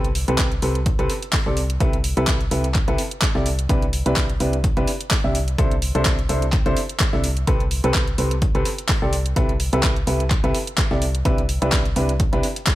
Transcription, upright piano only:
0.28 0.48 C3 medium
0.28 0.48 C4 medium
0.28 0.48 G4 medium
0.28 0.48 A4 medium
0.28 0.48 B4 medium
0.62 0.76 C3 medium
0.62 0.76 C4 medium
0.62 0.76 G4 medium
0.62 0.76 A4 medium
0.62 0.76 B4 medium
0.99 1.11 C3 medium
0.99 1.11 C4 medium
0.99 1.11 G4 medium
0.99 1.11 A4 medium
0.99 1.11 B4 loud
1.46 1.58 C3 medium
1.46 1.58 C4 medium
1.46 1.58 G4 medium
1.46 1.58 A4 medium
1.46 1.58 D5 medium
1.80 1.94 C3 medium
1.80 1.94 E4 medium
1.80 1.94 G4 medium
1.80 1.94 A4 medium
1.80 1.94 B4 medium
2.17 2.37 C3 medium
2.17 2.37 E4 medium
2.17 2.37 G4 medium
2.17 2.37 A4 medium
2.17 2.37 B4 medium
2.51 2.65 C3 medium
2.51 2.65 E4 medium
2.51 2.65 G4 medium
2.51 2.65 A4 medium
2.51 2.65 B4 medium
2.88 3.00 C3 medium
2.88 3.00 E4 medium
2.88 3.00 G4 medium
2.88 3.00 A4 medium
2.88 3.00 B4 loud
3.35 3.47 C3 medium
3.35 3.47 E4 medium
3.35 3.47 G4 medium
3.35 3.47 A4 medium
3.35 3.47 D5 medium
3.69 3.83 C3 medium
3.69 3.83 D4 medium
3.69 3.83 E4 medium
3.69 3.83 G4 medium
3.69 3.83 B4 loud
4.06 4.26 C3 medium
4.06 4.26 D4 medium
4.06 4.26 E4 medium
4.06 4.26 G4 medium
4.06 4.26 B4 medium
4.40 4.54 C3 medium
4.40 4.54 D4 medium
4.40 4.54 E4 medium
4.40 4.54 G4 medium
4.40 4.54 B4 medium
4.77 4.89 C3 medium
4.77 4.89 D4 medium
4.77 4.89 E4 medium
4.77 4.89 G4 medium
4.77 4.89 B4 loud
5.24 5.36 C3 medium
5.24 5.36 D4 medium
5.24 5.36 E4 medium
5.24 5.36 G4 medium
5.24 5.36 E5 medium
5.58 5.72 C3 medium
5.58 5.72 D4 medium
5.58 5.72 E4 medium
5.58 5.72 A4 medium
5.58 5.72 C5 loud
5.95 6.15 C3 medium
5.95 6.15 D4 medium
5.95 6.15 E4 medium
5.95 6.15 A4 medium
5.95 6.15 C5 medium
6.29 6.43 C3 medium
6.29 6.43 D4 medium
6.29 6.43 E4 medium
6.29 6.43 A4 medium
6.29 6.43 C5 medium
6.66 6.78 C3 medium
6.66 6.78 D4 medium
6.66 6.78 E4 medium
6.66 6.78 A4 medium
6.66 6.78 C5 loud
7.13 7.25 C3 medium
7.13 7.25 D4 medium
7.13 7.25 E4 medium
7.13 7.25 A4 medium
7.13 7.25 E5 medium
7.47 7.61 C3 medium
7.47 7.61 C4 medium
7.47 7.61 G4 medium
7.47 7.61 A4 medium
7.47 7.61 B4 loud
7.84 8.04 C3 medium
7.84 8.04 C4 medium
7.84 8.04 G4 medium
7.84 8.04 A4 medium
7.84 8.04 B4 medium
8.18 8.32 C3 medium
8.18 8.32 C4 medium
8.18 8.32 G4 medium
8.18 8.32 A4 medium
8.18 8.32 B4 medium
8.55 8.67 C3 medium
8.55 8.67 C4 medium
8.55 8.67 G4 medium
8.55 8.67 A4 medium
8.55 8.67 B4 loud
9.02 9.14 C3 medium
9.02 9.14 C4 medium
9.02 9.14 G4 medium
9.02 9.14 A4 medium
9.02 9.14 D5 medium
9.36 9.50 C3 medium
9.36 9.50 E4 medium
9.36 9.50 G4 medium
9.36 9.50 A4 medium
9.36 9.50 B4 loud
9.73 9.93 C3 medium
9.73 9.93 E4 medium
9.73 9.93 G4 medium
9.73 9.93 A4 medium
9.73 9.93 B4 medium
10.07 10.21 C3 medium
10.07 10.21 E4 medium
10.07 10.21 G4 medium
10.07 10.21 A4 medium
10.07 10.21 B4 medium
10.44 10.56 C3 medium
10.44 10.56 E4 medium
10.44 10.56 G4 medium
10.44 10.56 A4 medium
10.44 10.56 B4 loud
10.91 11.03 C3 medium
10.91 11.03 E4 medium
10.91 11.03 G4 medium
10.91 11.03 A4 medium
10.91 11.03 D5 medium
11.25 11.39 C3 medium
11.25 11.39 D4 medium
11.25 11.39 E4 medium
11.25 11.39 G4 medium
11.25 11.39 B4 loud
11.62 11.82 C3 medium
11.62 11.82 D4 medium
11.62 11.82 E4 medium
11.62 11.82 G4 medium
11.62 11.82 B4 medium
11.96 12.10 C3 medium
11.96 12.10 D4 medium
11.96 12.10 E4 medium
11.96 12.10 G4 medium
11.96 12.10 B4 medium
12.33 12.45 C3 medium
12.33 12.45 D4 medium
12.33 12.45 E4 medium
12.33 12.45 G4 medium
12.33 12.45 B4 loud

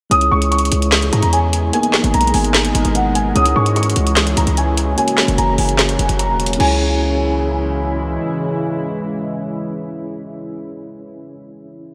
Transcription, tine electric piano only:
0.10 1.69 G#3 medium
0.10 1.70 C#4 medium
0.10 1.70 E4 medium
0.10 1.71 G#4 medium
0.10 1.71 C#5 medium
1.72 3.32 A#3 medium
1.72 3.32 B3 medium
1.72 3.32 D#4 medium
1.72 3.33 G#4 medium
1.72 3.33 A#4 medium
3.34 4.94 G#3 medium
3.34 4.94 C#4 medium
3.34 4.95 E4 medium
3.34 4.95 G#4 medium
3.34 4.95 C#5 medium
4.96 6.56 A#3 medium
4.96 6.56 C#4 medium
4.96 6.57 F#4 medium
4.96 6.57 A#4 medium
4.96 6.57 C#5 medium
6.57 11.24 C#4 medium
6.57 11.26 E4 medium
6.57 11.28 G#4 medium
6.63 11.29 C#5 loud

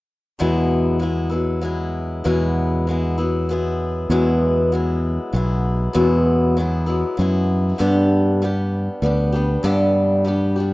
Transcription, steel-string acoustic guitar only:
0.39 1.01 E2 medium
0.39 1.02 B2 medium
0.39 0.99 F#3 medium
0.39 1.00 G#3 medium
0.39 1.02 B3 medium
0.39 1.02 E4 medium
0.99 1.31 F#3 medium
0.99 1.31 G#3 medium
0.99 1.30 B3 medium
0.99 1.28 E4 medium
1.29 1.60 F#3 soft
1.29 1.61 G#3 soft
1.29 1.62 B3 soft
1.29 1.62 E4 medium
1.61 2.25 F#3 medium
1.61 2.25 G#3 medium
1.61 2.25 B3 medium
1.61 2.26 E4 medium
2.24 2.86 E2 medium
2.24 2.87 B2 medium
2.24 2.86 F#3 medium
2.24 2.87 G#3 medium
2.24 2.87 B3 medium
2.24 2.87 E4 medium
2.87 3.18 F#3 medium
2.87 3.18 G#3 medium
2.87 3.17 B3 medium
2.87 3.17 E4 medium
3.18 3.48 F#3 soft
3.18 3.49 G#3 soft
3.18 3.49 B3 medium
3.18 3.48 E4 soft
3.49 4.10 F#3 medium
3.49 4.10 G#3 medium
3.49 4.11 B3 medium
3.49 4.11 E4 medium
4.10 4.72 E2 medium
4.10 4.72 B2 medium
4.10 4.71 F#3 medium
4.10 4.72 G#3 medium
4.10 4.74 B3 medium
4.10 4.72 E4 medium
4.72 5.31 F#3 medium
4.72 5.33 G#3 medium
4.72 5.34 B3 medium
4.72 5.35 E4 medium
5.33 5.93 F#3 medium
5.33 5.94 G#3 medium
5.33 5.95 B3 medium
5.33 5.95 E4 medium
5.93 6.55 E2 medium
5.93 6.56 B2 medium
5.93 6.55 F#3 medium
5.93 6.56 G#3 medium
5.93 6.59 B3 medium
5.93 6.57 E4 medium
6.57 6.87 F#3 medium
6.57 6.87 G#3 medium
6.57 6.86 B3 medium
6.57 6.85 E4 medium
6.86 7.16 F#3 soft
6.86 7.18 G#3 soft
6.86 7.18 B3 soft
6.86 7.17 E4 soft
7.17 7.79 F#3 medium
7.17 7.79 G#3 medium
7.17 7.80 B3 medium
7.17 7.80 E4 medium
7.78 8.40 G2 medium
7.78 8.41 D3 medium
7.78 8.41 G3 medium
7.78 8.41 B3 medium
7.78 8.41 D4 medium
7.78 8.44 G4 medium
8.42 9.02 G3 medium
8.42 9.02 B3 medium
8.42 9.03 D4 medium
8.42 9.05 G4 medium
9.02 9.33 G3 medium
9.02 9.34 B3 medium
9.02 9.33 D4 medium
9.02 9.31 G4 medium
9.32 9.63 G3 soft
9.32 9.63 B3 soft
9.32 9.63 D4 soft
9.32 9.63 G4 medium
9.63 10.25 G2 medium
9.63 10.25 D3 medium
9.63 10.24 G3 medium
9.63 10.24 B3 medium
9.63 10.26 D4 medium
9.63 10.28 G4 medium
10.24 10.56 G3 medium
10.24 10.56 B3 medium
10.24 10.56 D4 medium
10.24 10.55 G4 medium
10.56 10.73 B3 soft
10.56 10.73 D4 soft
10.56 10.73 G4 medium
10.60 10.73 G3 soft

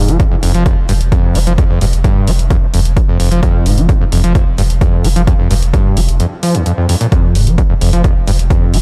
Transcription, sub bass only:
0.08 0.19 F1 medium
0.43 0.54 F1 loud
0.54 0.66 F1 medium
0.89 1.00 F1 loud
1.01 1.12 F1 medium
1.35 1.46 F1 loud
1.47 1.58 F1 medium
1.81 1.93 F1 loud
1.93 2.04 F1 medium
2.28 2.39 F1 loud
2.39 2.50 F1 medium
2.74 2.85 F1 loud
2.85 2.96 F1 medium
3.20 3.31 F1 loud
3.32 3.43 F1 medium
3.66 3.77 F1 loud
3.78 3.89 F1 medium
4.12 4.23 F1 loud
4.24 4.35 F1 medium
4.58 4.69 F1 loud
4.70 4.81 F1 medium
5.04 5.16 F1 loud
5.16 5.27 F1 medium
5.50 5.62 F1 loud
5.62 5.73 F1 medium
5.97 6.08 F1 loud
6.08 6.20 F1 medium
7.35 7.46 F1 loud
7.47 7.58 F1 medium
7.81 7.92 F1 loud
7.93 8.04 F1 medium
8.27 8.38 F1 loud
8.39 8.50 F1 medium
8.73 8.82 F1 loud

